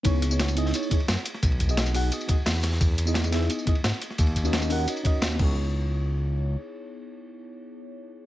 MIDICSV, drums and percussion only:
0, 0, Header, 1, 2, 480
1, 0, Start_track
1, 0, Tempo, 344828
1, 70, Time_signature, 4, 2, 24, 8
1, 11498, End_track
2, 0, Start_track
2, 0, Title_t, "Drums"
2, 61, Note_on_c, 9, 51, 90
2, 69, Note_on_c, 9, 36, 115
2, 70, Note_on_c, 9, 42, 81
2, 70, Note_on_c, 9, 54, 48
2, 200, Note_off_c, 9, 51, 0
2, 209, Note_off_c, 9, 36, 0
2, 209, Note_off_c, 9, 42, 0
2, 209, Note_off_c, 9, 54, 0
2, 308, Note_on_c, 9, 51, 70
2, 310, Note_on_c, 9, 42, 96
2, 310, Note_on_c, 9, 54, 27
2, 432, Note_off_c, 9, 54, 0
2, 432, Note_on_c, 9, 54, 62
2, 447, Note_off_c, 9, 51, 0
2, 449, Note_off_c, 9, 42, 0
2, 548, Note_on_c, 9, 51, 85
2, 550, Note_off_c, 9, 54, 0
2, 550, Note_on_c, 9, 38, 114
2, 550, Note_on_c, 9, 42, 85
2, 550, Note_on_c, 9, 54, 48
2, 554, Note_off_c, 9, 38, 0
2, 554, Note_on_c, 9, 38, 105
2, 671, Note_off_c, 9, 51, 0
2, 671, Note_on_c, 9, 51, 45
2, 674, Note_off_c, 9, 54, 0
2, 674, Note_on_c, 9, 40, 57
2, 674, Note_on_c, 9, 54, 59
2, 689, Note_off_c, 9, 42, 0
2, 693, Note_off_c, 9, 38, 0
2, 786, Note_off_c, 9, 51, 0
2, 786, Note_on_c, 9, 51, 69
2, 789, Note_off_c, 9, 54, 0
2, 789, Note_on_c, 9, 42, 99
2, 789, Note_on_c, 9, 54, 30
2, 813, Note_off_c, 9, 40, 0
2, 918, Note_on_c, 9, 38, 48
2, 926, Note_off_c, 9, 51, 0
2, 929, Note_off_c, 9, 42, 0
2, 929, Note_off_c, 9, 54, 0
2, 1027, Note_on_c, 9, 42, 86
2, 1027, Note_on_c, 9, 54, 52
2, 1045, Note_on_c, 9, 51, 95
2, 1057, Note_off_c, 9, 38, 0
2, 1152, Note_off_c, 9, 54, 0
2, 1152, Note_on_c, 9, 54, 27
2, 1167, Note_off_c, 9, 42, 0
2, 1184, Note_off_c, 9, 51, 0
2, 1264, Note_on_c, 9, 51, 76
2, 1270, Note_on_c, 9, 36, 103
2, 1270, Note_on_c, 9, 42, 99
2, 1291, Note_off_c, 9, 54, 0
2, 1394, Note_off_c, 9, 51, 0
2, 1394, Note_on_c, 9, 51, 44
2, 1409, Note_off_c, 9, 36, 0
2, 1409, Note_off_c, 9, 42, 0
2, 1508, Note_on_c, 9, 38, 117
2, 1508, Note_on_c, 9, 42, 83
2, 1508, Note_on_c, 9, 54, 51
2, 1509, Note_off_c, 9, 51, 0
2, 1509, Note_on_c, 9, 51, 82
2, 1513, Note_off_c, 9, 38, 0
2, 1513, Note_on_c, 9, 38, 127
2, 1625, Note_off_c, 9, 51, 0
2, 1625, Note_on_c, 9, 51, 43
2, 1648, Note_off_c, 9, 42, 0
2, 1648, Note_off_c, 9, 54, 0
2, 1652, Note_off_c, 9, 38, 0
2, 1743, Note_off_c, 9, 51, 0
2, 1743, Note_on_c, 9, 51, 77
2, 1749, Note_on_c, 9, 42, 100
2, 1749, Note_on_c, 9, 54, 28
2, 1872, Note_on_c, 9, 40, 39
2, 1882, Note_off_c, 9, 51, 0
2, 1888, Note_off_c, 9, 42, 0
2, 1888, Note_off_c, 9, 54, 0
2, 1987, Note_on_c, 9, 42, 81
2, 1987, Note_on_c, 9, 54, 45
2, 1989, Note_on_c, 9, 36, 121
2, 1994, Note_on_c, 9, 51, 88
2, 2011, Note_off_c, 9, 40, 0
2, 2112, Note_off_c, 9, 51, 0
2, 2112, Note_on_c, 9, 51, 42
2, 2126, Note_off_c, 9, 42, 0
2, 2126, Note_off_c, 9, 54, 0
2, 2128, Note_off_c, 9, 36, 0
2, 2227, Note_off_c, 9, 51, 0
2, 2227, Note_on_c, 9, 51, 64
2, 2228, Note_on_c, 9, 42, 93
2, 2228, Note_on_c, 9, 54, 26
2, 2229, Note_on_c, 9, 36, 65
2, 2351, Note_off_c, 9, 54, 0
2, 2351, Note_on_c, 9, 54, 60
2, 2352, Note_off_c, 9, 51, 0
2, 2352, Note_on_c, 9, 51, 44
2, 2368, Note_off_c, 9, 36, 0
2, 2368, Note_off_c, 9, 42, 0
2, 2467, Note_off_c, 9, 51, 0
2, 2467, Note_on_c, 9, 51, 83
2, 2469, Note_on_c, 9, 38, 113
2, 2470, Note_off_c, 9, 38, 0
2, 2470, Note_off_c, 9, 54, 0
2, 2470, Note_on_c, 9, 38, 119
2, 2470, Note_on_c, 9, 42, 80
2, 2470, Note_on_c, 9, 54, 48
2, 2592, Note_off_c, 9, 54, 0
2, 2592, Note_on_c, 9, 54, 57
2, 2606, Note_off_c, 9, 51, 0
2, 2609, Note_off_c, 9, 38, 0
2, 2609, Note_off_c, 9, 42, 0
2, 2703, Note_on_c, 9, 51, 69
2, 2708, Note_off_c, 9, 54, 0
2, 2708, Note_on_c, 9, 46, 79
2, 2708, Note_on_c, 9, 54, 28
2, 2843, Note_off_c, 9, 51, 0
2, 2847, Note_off_c, 9, 46, 0
2, 2847, Note_off_c, 9, 54, 0
2, 2948, Note_on_c, 9, 42, 80
2, 2948, Note_on_c, 9, 54, 48
2, 2949, Note_on_c, 9, 51, 89
2, 3073, Note_off_c, 9, 54, 0
2, 3073, Note_on_c, 9, 54, 26
2, 3080, Note_off_c, 9, 51, 0
2, 3080, Note_on_c, 9, 51, 47
2, 3087, Note_off_c, 9, 42, 0
2, 3180, Note_off_c, 9, 51, 0
2, 3180, Note_on_c, 9, 51, 73
2, 3188, Note_on_c, 9, 42, 96
2, 3189, Note_on_c, 9, 36, 112
2, 3212, Note_off_c, 9, 54, 0
2, 3319, Note_off_c, 9, 51, 0
2, 3327, Note_off_c, 9, 42, 0
2, 3328, Note_off_c, 9, 36, 0
2, 3423, Note_on_c, 9, 38, 109
2, 3429, Note_off_c, 9, 38, 0
2, 3429, Note_on_c, 9, 38, 118
2, 3429, Note_on_c, 9, 42, 82
2, 3429, Note_on_c, 9, 54, 48
2, 3432, Note_on_c, 9, 46, 86
2, 3568, Note_off_c, 9, 38, 0
2, 3568, Note_off_c, 9, 42, 0
2, 3568, Note_off_c, 9, 54, 0
2, 3571, Note_off_c, 9, 46, 0
2, 3658, Note_on_c, 9, 51, 71
2, 3669, Note_on_c, 9, 40, 58
2, 3669, Note_on_c, 9, 42, 95
2, 3669, Note_on_c, 9, 54, 28
2, 3671, Note_on_c, 9, 38, 41
2, 3789, Note_off_c, 9, 38, 0
2, 3789, Note_on_c, 9, 38, 49
2, 3797, Note_off_c, 9, 51, 0
2, 3808, Note_off_c, 9, 40, 0
2, 3808, Note_off_c, 9, 42, 0
2, 3808, Note_off_c, 9, 54, 0
2, 3909, Note_on_c, 9, 36, 127
2, 3909, Note_on_c, 9, 42, 77
2, 3909, Note_on_c, 9, 54, 49
2, 3915, Note_on_c, 9, 51, 81
2, 3928, Note_off_c, 9, 38, 0
2, 4048, Note_off_c, 9, 36, 0
2, 4048, Note_off_c, 9, 42, 0
2, 4048, Note_off_c, 9, 54, 0
2, 4054, Note_off_c, 9, 51, 0
2, 4149, Note_on_c, 9, 42, 91
2, 4149, Note_on_c, 9, 54, 27
2, 4156, Note_on_c, 9, 51, 70
2, 4272, Note_off_c, 9, 54, 0
2, 4272, Note_on_c, 9, 54, 59
2, 4288, Note_off_c, 9, 42, 0
2, 4295, Note_off_c, 9, 51, 0
2, 4375, Note_on_c, 9, 38, 107
2, 4388, Note_off_c, 9, 38, 0
2, 4388, Note_off_c, 9, 54, 0
2, 4388, Note_on_c, 9, 38, 122
2, 4388, Note_on_c, 9, 42, 78
2, 4388, Note_on_c, 9, 51, 87
2, 4388, Note_on_c, 9, 54, 45
2, 4511, Note_off_c, 9, 54, 0
2, 4511, Note_on_c, 9, 40, 56
2, 4511, Note_on_c, 9, 54, 56
2, 4521, Note_off_c, 9, 51, 0
2, 4521, Note_on_c, 9, 51, 47
2, 4527, Note_off_c, 9, 38, 0
2, 4527, Note_off_c, 9, 42, 0
2, 4625, Note_off_c, 9, 51, 0
2, 4625, Note_on_c, 9, 51, 76
2, 4627, Note_on_c, 9, 38, 95
2, 4628, Note_off_c, 9, 54, 0
2, 4628, Note_on_c, 9, 42, 94
2, 4628, Note_on_c, 9, 54, 26
2, 4650, Note_off_c, 9, 40, 0
2, 4745, Note_off_c, 9, 38, 0
2, 4745, Note_on_c, 9, 38, 49
2, 4764, Note_off_c, 9, 51, 0
2, 4768, Note_off_c, 9, 42, 0
2, 4768, Note_off_c, 9, 54, 0
2, 4868, Note_on_c, 9, 42, 80
2, 4868, Note_on_c, 9, 54, 49
2, 4875, Note_on_c, 9, 51, 81
2, 4884, Note_off_c, 9, 38, 0
2, 4993, Note_off_c, 9, 54, 0
2, 4993, Note_on_c, 9, 54, 26
2, 5007, Note_off_c, 9, 42, 0
2, 5015, Note_off_c, 9, 51, 0
2, 5107, Note_on_c, 9, 42, 91
2, 5107, Note_on_c, 9, 51, 64
2, 5109, Note_on_c, 9, 36, 111
2, 5132, Note_off_c, 9, 54, 0
2, 5224, Note_off_c, 9, 51, 0
2, 5224, Note_on_c, 9, 51, 49
2, 5246, Note_off_c, 9, 42, 0
2, 5248, Note_off_c, 9, 36, 0
2, 5348, Note_on_c, 9, 38, 125
2, 5348, Note_on_c, 9, 42, 78
2, 5348, Note_on_c, 9, 54, 47
2, 5349, Note_off_c, 9, 38, 0
2, 5349, Note_on_c, 9, 38, 119
2, 5351, Note_off_c, 9, 51, 0
2, 5351, Note_on_c, 9, 51, 97
2, 5468, Note_off_c, 9, 51, 0
2, 5468, Note_on_c, 9, 51, 40
2, 5487, Note_off_c, 9, 42, 0
2, 5487, Note_off_c, 9, 54, 0
2, 5488, Note_off_c, 9, 38, 0
2, 5590, Note_off_c, 9, 51, 0
2, 5590, Note_on_c, 9, 42, 98
2, 5590, Note_on_c, 9, 51, 74
2, 5590, Note_on_c, 9, 54, 28
2, 5714, Note_on_c, 9, 40, 37
2, 5729, Note_off_c, 9, 42, 0
2, 5729, Note_off_c, 9, 51, 0
2, 5729, Note_off_c, 9, 54, 0
2, 5821, Note_on_c, 9, 51, 96
2, 5829, Note_on_c, 9, 36, 127
2, 5829, Note_on_c, 9, 42, 74
2, 5829, Note_on_c, 9, 54, 48
2, 5853, Note_off_c, 9, 40, 0
2, 5942, Note_off_c, 9, 51, 0
2, 5942, Note_on_c, 9, 51, 45
2, 5968, Note_off_c, 9, 36, 0
2, 5968, Note_off_c, 9, 42, 0
2, 5968, Note_off_c, 9, 54, 0
2, 6069, Note_on_c, 9, 36, 61
2, 6070, Note_on_c, 9, 42, 85
2, 6070, Note_on_c, 9, 54, 26
2, 6076, Note_off_c, 9, 51, 0
2, 6076, Note_on_c, 9, 51, 75
2, 6191, Note_off_c, 9, 54, 0
2, 6191, Note_on_c, 9, 54, 62
2, 6195, Note_off_c, 9, 51, 0
2, 6195, Note_on_c, 9, 51, 41
2, 6208, Note_off_c, 9, 36, 0
2, 6209, Note_off_c, 9, 42, 0
2, 6308, Note_off_c, 9, 54, 0
2, 6308, Note_on_c, 9, 38, 125
2, 6308, Note_on_c, 9, 42, 74
2, 6308, Note_on_c, 9, 54, 47
2, 6309, Note_off_c, 9, 51, 0
2, 6309, Note_on_c, 9, 51, 82
2, 6314, Note_off_c, 9, 38, 0
2, 6314, Note_on_c, 9, 38, 115
2, 6431, Note_off_c, 9, 54, 0
2, 6431, Note_on_c, 9, 40, 55
2, 6431, Note_on_c, 9, 54, 59
2, 6447, Note_off_c, 9, 42, 0
2, 6448, Note_off_c, 9, 51, 0
2, 6453, Note_off_c, 9, 38, 0
2, 6540, Note_on_c, 9, 51, 63
2, 6549, Note_off_c, 9, 54, 0
2, 6549, Note_on_c, 9, 46, 83
2, 6549, Note_on_c, 9, 54, 28
2, 6570, Note_off_c, 9, 40, 0
2, 6679, Note_off_c, 9, 51, 0
2, 6688, Note_off_c, 9, 46, 0
2, 6688, Note_off_c, 9, 54, 0
2, 6789, Note_on_c, 9, 42, 81
2, 6789, Note_on_c, 9, 51, 83
2, 6789, Note_on_c, 9, 54, 48
2, 6913, Note_off_c, 9, 54, 0
2, 6913, Note_on_c, 9, 54, 27
2, 6915, Note_off_c, 9, 51, 0
2, 6915, Note_on_c, 9, 51, 41
2, 6928, Note_off_c, 9, 42, 0
2, 7027, Note_on_c, 9, 42, 86
2, 7029, Note_on_c, 9, 36, 111
2, 7039, Note_off_c, 9, 51, 0
2, 7039, Note_on_c, 9, 51, 73
2, 7053, Note_off_c, 9, 54, 0
2, 7166, Note_off_c, 9, 42, 0
2, 7169, Note_off_c, 9, 36, 0
2, 7178, Note_off_c, 9, 51, 0
2, 7262, Note_on_c, 9, 51, 83
2, 7267, Note_on_c, 9, 38, 127
2, 7267, Note_on_c, 9, 42, 75
2, 7267, Note_on_c, 9, 54, 47
2, 7272, Note_off_c, 9, 38, 0
2, 7272, Note_on_c, 9, 38, 114
2, 7401, Note_off_c, 9, 51, 0
2, 7407, Note_off_c, 9, 42, 0
2, 7407, Note_off_c, 9, 54, 0
2, 7411, Note_off_c, 9, 38, 0
2, 7508, Note_on_c, 9, 49, 92
2, 7510, Note_on_c, 9, 36, 116
2, 7647, Note_off_c, 9, 49, 0
2, 7649, Note_off_c, 9, 36, 0
2, 11498, End_track
0, 0, End_of_file